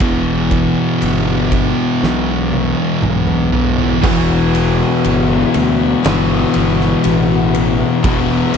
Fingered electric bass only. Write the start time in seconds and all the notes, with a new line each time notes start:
0.01 E1
1.02 G1
2.03 B1
3.03 B1
4.04 E1
5.05 G1
5.55 D2
6.05 G1
6.56 G1
7.05 A1
8.05 E1